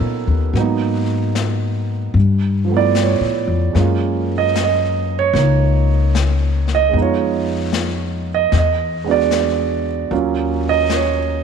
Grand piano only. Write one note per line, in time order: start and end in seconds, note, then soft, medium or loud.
0.00 0.52 F#3 soft
0.00 0.54 A#3 soft
0.00 0.55 B3 soft
0.00 0.56 C#4 soft
0.00 0.57 D#4 medium
0.00 0.56 F4 soft
0.00 0.57 A4 medium
0.00 0.56 A#4 medium
0.00 0.57 B4 medium
0.00 0.57 C#5 medium
0.00 0.57 D#5 medium
0.54 2.14 F#3 soft
0.54 2.15 A#3 soft
0.54 2.16 B3 soft
0.59 2.17 D#4 soft
2.64 3.72 F3 soft
2.69 3.75 A3 soft
2.69 3.76 B3 soft
2.76 3.78 E4 soft
2.76 2.97 D5 medium
3.03 4.30 C#5 medium
3.73 6.88 G#3 soft
3.73 5.33 A#3 soft
3.73 6.94 C#4 soft
3.79 6.96 F4 soft
4.38 4.58 D#5 medium
4.64 5.13 D#5 medium
5.19 5.90 C#5 medium
5.35 6.94 A#3 soft
5.35 6.95 D#4 soft
6.75 6.96 D#5 medium
6.89 8.50 G#3 soft
6.89 8.52 B3 soft
6.97 8.54 D#4 soft
6.97 8.56 F4 soft
7.02 8.28 C#5 medium
8.34 8.55 D#5 medium
8.58 9.08 D#5 medium
9.04 10.10 G#3 soft
9.04 10.11 B3 soft
9.04 10.12 D4 soft
9.09 10.12 F#4 medium
9.09 9.85 D5 medium
10.11 11.44 F#3 soft
10.11 11.44 A#3 soft
10.11 11.44 C#4 soft
10.11 11.44 F4 medium
10.69 10.92 D#5 medium
10.95 11.44 C#5 medium